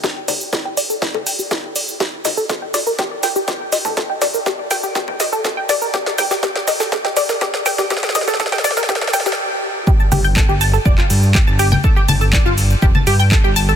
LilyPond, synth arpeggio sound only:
\new Staff \with { instrumentName = "Synth arpeggio sound" } { \time 4/4 \key g \minor \tempo 4 = 122 g'16 r16 d''16 r16 a'16 g''16 d''16 a'16 g'16 a'16 g''16 g'16 g'16 r16 d''16 r16 | g'16 r16 ees''16 a'16 a'16 g''16 d''16 bes'16 g'16 r16 g''16 g'16 g'16 r16 ees''16 a'16 | a'16 g''16 d''16 bes'16 g'16 r16 g''16 g'16 g'16 r16 ees''16 a'16 a'16 g''16 d''16 bes'16 | g'16 r16 g''16 g'16 g'16 r16 ees''16 a'16 a'16 g''16 d''16 bes'16 g'16 r16 g''16 g'16 |
g'16 r16 ees''16 a'16 a'16 g''16 d''16 bes'16 g'16 r16 g''16 g'16 r4 | <g' g''>16 <a'' a'''>16 <g' g''>16 <g'' g'''>16 <a' a''>16 <g' g''>16 <a'' a'''>16 <a' a''>16 <d'' d'''>16 <f' f''>16 r8 <g' g''>16 <a'' a'''>16 <g' g''>16 <g'' g'''>16 | <a' a''>16 <g' g''>16 <a'' a'''>16 <a' a''>16 <d'' d'''>16 <f' f''>16 r8 <g' g''>16 <a'' a'''>16 <g' g''>16 <g'' g'''>16 <a' a''>16 <g' g''>16 <a'' a'''>16 <a' a''>16 | }